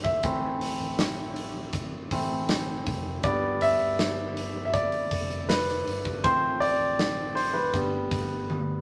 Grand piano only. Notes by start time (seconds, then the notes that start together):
Already playing: C5
0.04 E5
0.23 E3 A3 C4
2.12 E3 A3 C4
3.24 D3 G3 B3 D5
3.62 E5
4.65 E5
4.74 D5
5.49 B4
6.24 F3 A3 C4 C5
6.60 D5
7.35 C5
7.54 B4
7.73 D3 G3 B3